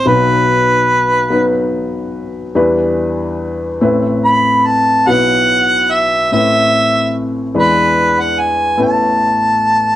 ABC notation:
X:1
M:6/8
L:1/16
Q:3/8=48
K:Bphr
V:1 name="Harmonica"
B8 z4 | z8 b2 a2 | f4 e2 e4 z2 | B3 f ^g2 a6 |]
V:2 name="Felt piano"
[F,B,^DB]6 [F,B,DB]6 | [G,DEB]6 [A,CEB]6 | [F,B,EB]6 [A,CEB]6 | [^G,DEB]6 [A,B,EB]6 |]
V:3 name="Felt piano" clef=bass
[B,,,B,,]12 | [E,,E,]6 [A,,,A,,]6 | [B,,,B,,]6 [A,,,A,,]6 | [E,,E,]6 [A,,,A,,]6 |]